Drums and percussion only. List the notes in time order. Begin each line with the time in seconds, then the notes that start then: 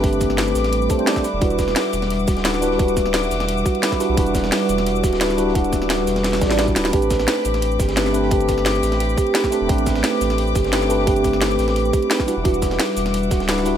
0.04 kick, closed hi-hat
0.13 closed hi-hat, shaker
0.20 kick, snare, closed hi-hat, shaker
0.30 snare
0.38 snare, closed hi-hat
0.47 shaker
0.55 snare, closed hi-hat, shaker
0.64 snare, closed hi-hat
0.72 closed hi-hat
0.82 shaker
0.90 kick, closed hi-hat, shaker
0.99 closed hi-hat
1.06 snare, closed hi-hat
1.16 kick, snare, shaker
1.24 closed hi-hat, shaker
1.41 kick, closed hi-hat
1.50 closed hi-hat, shaker
1.59 kick, snare, closed hi-hat, shaker
1.68 snare
1.76 snare, closed hi-hat, open hi-hat
1.93 closed hi-hat, shaker
2.02 snare, closed hi-hat
2.10 closed hi-hat
2.19 shaker
2.27 kick, snare, closed hi-hat, shaker
2.37 snare, closed hi-hat
2.44 snare, closed hi-hat
2.54 snare, shaker
2.62 closed hi-hat, shaker
2.71 snare
2.79 kick, closed hi-hat
2.88 closed hi-hat, shaker
2.97 kick, snare, closed hi-hat, shaker
3.06 snare
3.14 snare, closed hi-hat
3.23 shaker
3.31 snare, closed hi-hat, shaker
3.40 snare, closed hi-hat
3.48 closed hi-hat
3.58 shaker
3.66 kick, closed hi-hat, shaker
3.75 closed hi-hat
3.83 snare, closed hi-hat
3.92 kick, snare, shaker
4.00 closed hi-hat, shaker
4.17 kick, closed hi-hat
4.26 closed hi-hat, shaker
4.35 kick, snare, closed hi-hat, shaker
4.44 snare
4.52 snare, closed hi-hat, open hi-hat
4.69 closed hi-hat, shaker
4.78 snare, closed hi-hat
4.86 closed hi-hat
4.96 shaker
5.04 kick, snare, closed hi-hat, shaker
5.13 snare, closed hi-hat
5.21 snare, closed hi-hat
5.30 snare, shaker
5.38 closed hi-hat, shaker
5.48 snare
5.55 kick, closed hi-hat
5.64 closed hi-hat, shaker
5.73 kick, snare, closed hi-hat, shaker
5.82 snare
5.90 snare, closed hi-hat
6.07 snare, closed hi-hat, shaker
6.16 snare, closed hi-hat
6.23 snare, closed hi-hat, open hi-hat
6.33 snare, shaker
6.41 kick, snare, closed hi-hat, open hi-hat, shaker
6.51 snare, closed hi-hat
6.59 snare, closed hi-hat
6.68 kick, shaker
6.76 snare, closed hi-hat, shaker
6.85 snare
6.93 kick, closed hi-hat
7.02 closed hi-hat, shaker
7.10 kick, snare, closed hi-hat, shaker
7.19 snare
7.28 snare, closed hi-hat, open hi-hat
7.45 closed hi-hat, shaker
7.54 snare, closed hi-hat
7.62 closed hi-hat
7.71 shaker
7.79 kick, snare, closed hi-hat, shaker
7.88 snare, closed hi-hat
7.96 snare, closed hi-hat
8.06 snare, shaker
8.14 closed hi-hat, shaker
8.23 snare
8.31 kick, closed hi-hat
8.41 closed hi-hat, shaker
8.49 kick, snare, closed hi-hat, shaker
8.58 snare
8.65 snare, closed hi-hat
8.75 shaker
8.83 snare, closed hi-hat, shaker
8.92 snare, closed hi-hat
9.00 closed hi-hat
9.09 shaker
9.18 kick, closed hi-hat, shaker
9.27 closed hi-hat
9.34 snare, closed hi-hat
9.44 kick, snare, shaker
9.52 closed hi-hat, shaker
9.69 kick, closed hi-hat
9.78 closed hi-hat, shaker
9.86 kick, snare, closed hi-hat, shaker
9.95 snare
10.04 snare, closed hi-hat, open hi-hat
10.21 closed hi-hat, shaker
10.30 snare, closed hi-hat
10.38 closed hi-hat
10.47 shaker
10.55 kick, snare, closed hi-hat, shaker
10.64 snare, closed hi-hat
10.73 snare, closed hi-hat
10.82 snare, shaker
10.90 closed hi-hat, shaker
10.99 snare
11.07 kick, closed hi-hat
11.16 closed hi-hat, shaker
11.24 kick, snare, closed hi-hat, shaker
11.33 snare
11.42 snare, closed hi-hat
11.51 shaker
11.59 snare, closed hi-hat, shaker
11.68 snare, closed hi-hat
11.76 closed hi-hat
11.85 shaker
11.93 kick, closed hi-hat, shaker
12.02 closed hi-hat
12.10 snare, closed hi-hat
12.20 kick, snare, shaker
12.28 closed hi-hat, shaker
12.45 kick, closed hi-hat
12.54 closed hi-hat, shaker
12.62 kick, snare, closed hi-hat, shaker
12.71 snare
12.79 snare, closed hi-hat, open hi-hat
12.97 closed hi-hat, shaker
13.06 snare, closed hi-hat
13.14 closed hi-hat
13.23 shaker
13.31 kick, snare, closed hi-hat, shaker
13.40 snare, closed hi-hat
13.48 snare, closed hi-hat
13.58 snare, shaker
13.65 closed hi-hat, shaker